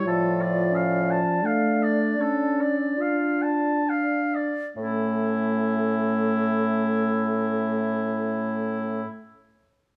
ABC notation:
X:1
M:3/4
L:1/16
Q:1/4=34
K:A
V:1 name="Oboe"
A d =f a f d A d f a f d | E12 |]
V:2 name="Flute"
d8- d2 z2 | A12 |]
V:3 name="Clarinet"
=F2 C2 D4 F2 z2 | C12 |]
V:4 name="French horn"
=F,4 A,2 C2 D4 | A,12 |]
V:5 name="Bassoon" clef=bass
A,,4 z8 | A,,12 |]